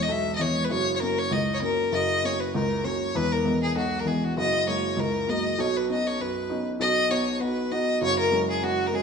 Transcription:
0.00 0.66 E1 medium
0.00 0.13 D#5 medium
0.09 0.39 B1 medium
0.09 0.34 E5 loud
0.35 0.64 E3 soft
0.35 0.43 D#5 loud
0.40 0.64 G#3 soft
0.40 0.65 B3 medium
0.40 0.66 C#5 loud
0.65 0.73 B4 medium
0.70 1.88 F#1 medium
0.70 1.00 F#2 medium
0.70 0.95 C#5 loud
0.96 1.01 C#5 medium
1.00 1.25 F#3 soft
1.00 1.26 A#3 soft
1.00 1.26 C#4 medium
1.00 1.20 A#4 medium
1.18 1.34 C#5 medium
1.31 1.61 C#2 medium
1.31 1.52 D#5 medium
1.52 1.61 C#5 medium
1.52 1.56 D#5 medium
1.61 1.86 F#3 soft
1.61 1.86 A#3 soft
1.61 1.87 C#4 medium
1.61 1.95 A#4 medium
1.92 3.10 F#1 medium
1.92 2.22 F#2 medium
1.92 2.27 D#5 loud
2.23 2.48 F#3 soft
2.23 2.48 A#3 soft
2.23 2.48 C#4 medium
2.23 2.41 C#5 medium
2.40 2.54 B4 medium
2.55 2.84 C#2 medium
2.55 2.86 A#4 medium
2.84 3.08 F#3 soft
2.84 3.09 A#3 soft
2.84 3.09 C#4 medium
2.84 3.18 C#5 medium
3.15 4.33 E1 medium
3.15 3.45 E2 medium
3.15 3.34 B4 loud
3.32 3.62 A#4 loud
3.45 3.69 E3 soft
3.45 3.70 G#3 soft
3.45 3.70 B3 medium
3.63 3.76 G#4 medium
3.76 4.05 B1 medium
3.76 4.01 F#4 medium
4.00 4.09 A#4 medium
4.05 4.30 E3 medium
4.05 4.30 G#3 soft
4.05 4.31 B3 medium
4.05 4.26 G#4 medium
4.24 4.38 F#4 medium
4.37 5.55 F#1 medium
4.37 4.66 F#2 medium
4.37 4.66 D#5 loud
4.66 4.91 F#3 medium
4.66 4.91 G#3 soft
4.66 4.91 A#3 medium
4.66 5.01 C#5 medium
4.97 5.27 C#2 medium
4.97 5.31 A#4 medium
5.27 5.52 F#3 medium
5.27 5.52 G#3 soft
5.27 5.53 A#3 medium
5.27 5.62 D#5 medium
5.58 6.76 B1 medium
5.58 5.88 B2 medium
5.58 5.79 C#5 loud
5.77 5.90 B4 medium
5.88 6.13 B3 soft
5.88 6.13 C#4 soft
5.88 6.14 D#4 soft
5.88 6.08 D#5 medium
6.07 6.23 C#5 medium
6.20 6.49 F#2 medium
6.20 6.67 B4 medium
6.49 6.74 B3 soft
6.49 6.74 C#4 soft
6.49 6.74 D#4 medium
6.80 7.98 B1 medium
6.80 7.98 B2 medium
6.80 7.12 D#5 loud
7.09 7.38 B3 medium
7.09 7.38 D#4 medium
7.09 7.39 F#4 medium
7.09 7.35 C#5 medium
7.35 7.43 C#5 medium
7.40 7.70 B3 soft
7.40 7.70 D#4 soft
7.40 7.70 F#4 medium
7.40 7.73 B4 medium
7.71 8.01 B3 soft
7.71 8.01 D#4 soft
7.71 8.01 F#4 medium
7.71 8.02 D#5 medium
8.01 9.03 F#1 medium
8.01 9.03 F#2 medium
8.01 8.18 C#5 loud
8.19 8.47 A#4 loud
8.31 8.60 F#3 medium
8.31 8.61 G#3 soft
8.31 8.61 C#4 medium
8.50 8.65 G#4 medium
8.62 8.90 F#3 medium
8.62 8.91 G#3 soft
8.62 8.91 C#4 medium
8.62 8.89 F#4 medium
8.87 8.97 A#4 medium
8.92 9.03 F#3 medium
8.92 9.03 G#3 soft
8.92 9.03 C#4 medium
8.92 9.03 G#4 loud

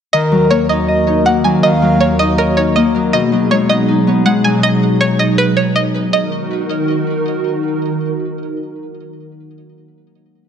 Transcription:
0.13 3.10 D#2 medium
0.13 3.10 D#3 medium
0.13 1.62 D#3 medium
0.13 3.10 F#4 medium
0.13 0.66 A#4 loud
0.13 3.10 A#4 medium
0.13 0.48 D#5 loud
0.32 1.43 F#3 medium
0.50 1.25 A#3 medium
0.50 0.67 C#5 medium
0.69 1.07 D#4 medium
0.69 0.87 C#5 medium
0.69 1.22 D#5 medium
0.88 1.23 D#5 medium
0.88 2.38 D#5 medium
1.07 2.19 D#4 medium
1.25 2.00 A#3 medium
1.25 1.42 F#5 medium
1.44 1.68 F#3 medium
1.44 1.61 G#5 medium
1.63 3.18 D#3 medium
1.63 1.99 D#5 loud
1.63 2.16 F5 loud
1.82 2.93 F#3 medium
2.00 2.76 A#3 medium
2.00 2.17 C#5 medium
2.19 2.57 D#4 medium
2.19 2.36 D#5 medium
2.19 2.37 D#5 medium
2.38 2.55 A#4 medium
2.38 2.73 C#5 medium
2.38 4.17 D#5 medium
2.57 3.88 D#4 medium
2.57 2.73 C#5 medium
2.76 3.19 A#3 loud
2.76 3.11 D#5 medium
2.95 3.18 F#3 medium
3.13 6.18 B2 medium
3.13 6.10 B2 medium
3.13 6.10 F#3 medium
3.13 6.10 D#4 medium
3.13 6.10 G#4 medium
3.13 3.49 D#5 loud
3.32 4.43 F#3 medium
3.51 4.24 G#3 medium
3.51 3.67 C#5 medium
3.69 4.07 B3 medium
3.69 4.22 D#5 medium
3.88 6.59 D#4 medium
4.07 7.18 B3 medium
4.25 6.18 G#3 loud
4.25 4.42 F#5 medium
4.44 6.18 F#3 medium
4.44 4.61 G#5 medium
4.63 4.99 D#5 loud
5.01 5.17 C#5 medium
5.19 5.36 D#5 medium
5.38 5.55 B4 medium
5.57 5.73 C#5 medium
5.76 6.11 D#5 medium
6.13 9.89 D#3 medium
6.13 9.89 D#4 medium
6.13 9.89 F#4 medium
6.13 9.89 A#4 loud
6.13 7.22 D#5 medium

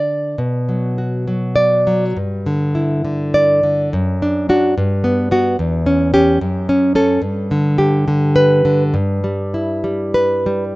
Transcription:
0.00 0.35 D3 soft
0.00 0.39 D5 soft
0.38 2.13 B2 soft
0.69 1.26 F#3 soft
0.98 2.17 F#4 soft
1.28 1.86 F#3 soft
1.56 2.04 D5 medium
1.87 2.17 F#3 soft
2.17 3.88 G2 soft
2.46 3.03 D3 soft
2.75 3.92 E4 soft
3.05 3.62 D3 soft
3.34 3.81 D5 medium
3.63 3.92 D3 soft
3.93 4.74 F#2 medium
4.22 4.48 D4 soft
4.49 4.74 D4 soft
4.49 4.74 F#4 medium
4.78 5.56 G2 medium
5.04 5.30 B3 medium
5.31 5.56 B3 soft
5.31 5.56 F#4 medium
5.59 6.39 E2 medium
5.86 6.13 C#4 medium
6.14 6.38 C#4 soft
6.14 6.38 G4 medium
6.41 7.21 F#2 medium
6.69 6.94 C#4 medium
6.95 7.20 C#4 medium
6.95 7.20 A4 medium
7.22 8.90 G2 medium
7.51 8.06 D3 soft
7.78 8.95 G4 medium
8.08 8.64 D3 medium
8.36 8.83 B4 medium
8.65 8.95 D3 soft
8.94 10.72 G2 medium
9.24 9.83 G3 soft
9.54 10.76 E4 soft
9.84 10.45 G3 soft
10.14 10.64 B4 medium
10.46 10.76 G3 soft

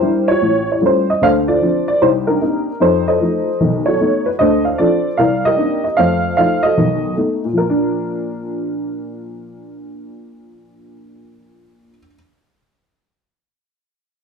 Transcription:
0.00 0.29 G3 medium
0.00 0.29 D4 soft
0.00 0.29 E4 medium
0.00 0.29 G4 medium
0.00 0.39 A#4 medium
0.00 0.29 C5 medium
0.28 0.81 F4 medium
0.28 1.05 G4 medium
0.28 0.70 C#5 medium
0.42 0.76 A1 medium
0.72 0.77 C#5 medium
0.81 1.09 G3 medium
0.81 1.09 A3 soft
0.81 1.09 C#4 soft
0.81 1.10 F4 medium
0.86 1.08 C5 medium
1.10 1.23 D#5 medium
1.21 1.56 D2 medium
1.21 1.56 D3 medium
1.21 1.46 A4 medium
1.21 1.97 C5 medium
1.21 1.29 F5 loud
1.48 1.97 F4 medium
1.48 1.97 A4 medium
1.48 1.87 D5 medium
1.62 1.89 F3 medium
1.62 1.89 C4 soft
1.62 1.89 D4 medium
1.88 2.02 D5 medium
2.02 2.36 C2 medium
2.02 2.26 D#4 medium
2.02 2.77 G4 medium
2.02 2.08 C5 medium
2.27 2.41 D4 medium
2.27 2.41 D#4 soft
2.27 2.82 A#4 medium
2.41 2.68 A#3 medium
2.41 2.69 C4 soft
2.41 2.69 D4 soft
2.41 2.69 D#4 medium
2.80 3.15 F2 medium
2.80 3.20 D#4 medium
2.80 3.06 A4 medium
2.80 3.05 C5 medium
3.08 3.83 A4 medium
3.08 3.57 C5 medium
3.08 3.89 D#5 medium
3.20 3.48 F3 soft
3.20 3.48 A3 soft
3.20 3.48 D#4 medium
3.60 3.95 B1 medium
3.60 3.95 D#3 medium
3.86 4.36 F#4 soft
3.86 4.36 A4 medium
3.86 4.27 C#5 medium
4.00 4.28 A3 medium
4.00 4.28 B3 soft
4.00 4.28 D#4 medium
4.26 4.31 B4 medium
4.39 4.75 D2 medium
4.39 4.74 D3 medium
4.39 4.78 A4 medium
4.39 5.15 C5 medium
4.39 4.64 D#5 medium
4.65 4.78 F5 medium
4.78 5.06 F3 soft
4.78 5.06 C4 soft
4.78 5.07 D4 medium
4.78 5.16 F4 medium
4.78 5.16 A4 medium
4.78 5.18 D5 medium
5.17 5.53 C2 medium
5.17 5.45 A#4 medium
5.17 5.95 D5 medium
5.17 5.45 F5 medium
5.45 5.95 G4 medium
5.45 5.95 A#4 medium
5.45 5.82 D#5 medium
5.57 5.85 A#3 medium
5.57 5.86 C4 soft
5.57 5.86 D4 soft
5.57 5.86 D#4 medium
5.84 5.98 D#5 medium
5.97 6.33 F2 medium
5.97 6.33 A3 medium
5.97 6.64 A4 medium
5.97 6.74 C5 medium
5.97 6.35 F5 medium
6.37 6.65 F3 soft
6.37 6.66 A3 soft
6.37 6.66 D#4 medium
6.37 6.65 F5 medium
6.63 7.40 F#4 medium
6.63 7.40 A4 medium
6.63 7.13 D#5 medium
6.77 7.12 B1 medium
6.77 7.12 D#3 medium
7.17 7.45 A3 medium
7.17 7.45 B3 soft
7.17 7.45 D#4 medium
7.45 11.90 A#2 medium
7.53 11.98 F3 medium
7.58 12.06 A#3 medium
7.58 11.99 A#4 medium
7.70 12.15 D4 medium

